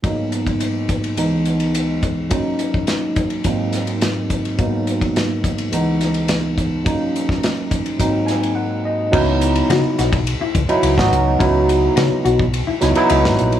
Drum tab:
CC |----------------|----------------|----------------|----------------|
RD |x-xxx-xxx-xxx-x-|x-x-x-xxx-xxx-xx|x-xxx-xxx-xxx-x-|x-x-x-xxx-xx----|
HH |p-p-p-p-p-p-p-p-|p-p-p-p-p-p-p-p-|p-p-p-p-p-p-p-p-|p-p-p-p-p-p-----|
SD |----------------|----o-----o-o---|----o-----o-o---|---oo-----o-----|
BD |o--o--o-------o-|o--o--o-o-----o-|o--o--o-------o-|o--o--o-o-------|

CC |x---------------|----------------|
RD |--xxx-xxx-xxx-x-|x-x-x-x-x-xxx-xx|
HH |--p---p---p---p-|--p---p---p---p-|
SD |----o-o------o--|----o-----o--o--|
BD |o------o--o--o--|o------o--------|